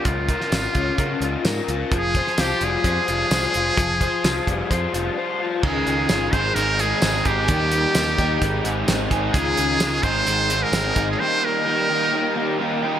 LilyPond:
<<
  \new Staff \with { instrumentName = "Muted trumpet" } { \time 4/4 \key aes \major \tempo 4 = 129 f'2.~ f'8 r8 | aes'4 g'8 aes'2~ aes'8~ | aes'2. r4 | aes'4. c''8 bes'8 aes'4 g'8~ |
g'2.~ g'8 r8 | aes'4. c''4~ c''16 bes'4 aes'16 | c''8 bes'2. r8 | }
  \new Staff \with { instrumentName = "Overdriven electric guitar" } { \time 4/4 \key aes \major <des f' bes'>8 bes'8 f'8 des'8 bes'8 f'8 bes'8 f'8 | f8 c''8 f'8 g8 c''8 f'8 c''8 f'8 | f8 c''8 f'8 g8 c''8 f'8 c''8 f'8 | <des aes des' f' aes'>8 <des' f' aes'>8 <aes des' f' aes'>8 <aes, ees aes c' ees' aes'>8 <aes c' ees' aes'>8 <aes c' ees' aes'>8 <aes, ees aes c' ees' aes'>8 <aes c' ees' aes'>8 |
<ees g bes ees' g'>8 <bes ees' g'>8 <g bes ees' g'>8 <ees g bes ees' g'>8 <aes, ees aes c' ees' aes'>8 <aes c' ees' aes'>8 <aes, ees aes c' ees' aes'>8 <aes c' ees' aes'>8 | <des aes des' f' aes'>8 <des' f' aes'>8 <aes des' f' aes'>8 <aes, ees aes c' ees' aes'>8 <aes c' ees' aes'>8 <aes c' ees' aes'>8 <aes, ees aes c' ees' aes'>8 <aes c' ees' aes'>8 | <ees g bes ees' g'>8 <bes ees' g'>8 <g bes ees' g'>8 <ees g bes ees' g'>8 <g bes ees' g'>8 <bes ees' g'>8 <ees g bes ees' g'>8 <bes ees' g'>8 | }
  \new Staff \with { instrumentName = "Overdriven electric guitar" } { \clef bass \time 4/4 \key aes \major r1 | r1 | r1 | ees4 ees8 ees8 ees8 aes8 c'8 aes'8 |
ees4 ees8 ees'8 ees8 aes8 c'8 aes'8 | ees4 ees8 ees8 ees8 aes8 c'8 aes'8 | ees4 ees8 ees'8 ees8 bes8 ees'8 g'8 | }
  \new Staff \with { instrumentName = "Picked electric bass" } { \clef bass \time 4/4 \key aes \major des,4 aes,,8 des,8 des8 des,8 aes,8 des,8 | f,,4 c,8 f,,8 f,8 f,,8 c,8 f,,8 | f,,4 c,8 f,,8 f,8 f,,8 r4 | des,8 des,8 g,,8 aes,,8 aes,,4 aes,,8 aes,,8 |
ees,4 ees,8 ees,8 aes,,8 aes,,8 aes,,8 aes,,8 | des,8 des,8 des,8 aes,,8 aes,,4 aes,,8 aes,,8 | r1 | }
  \new DrumStaff \with { instrumentName = "Drums" } \drummode { \time 4/4 <hh bd>8 <hh bd>16 sn16 <hh sn tamb>8 <hh bd>8 <hh bd>8 hh8 <hh sn tamb>8 hh8 | <hh bd>8 <hh bd>16 sn16 <hh sn tamb>8 hh8 <hh bd>8 hh8 <hh sn tamb>8 hh8 | <hh bd>8 <hh bd>8 <hh sn tamb>8 <hh bd>8 <hh bd>8 hh8 r4 | <cymc bd>8 hh8 <hh sn tamb>8 <hh bd>8 hh8 hh8 <hh sn tamb>8 <hh bd>8 |
<hh bd>8 hh8 <hh sn tamb>8 <hh bd>8 <hh bd>8 hh8 <hh sn tamb>8 <hh bd>8 | <hh bd>8 hh8 <hh sn tamb>8 <hh bd>8 hh8 hh8 <hh sn tamb>8 <hh bd>8 | r4 r4 r4 r4 | }
>>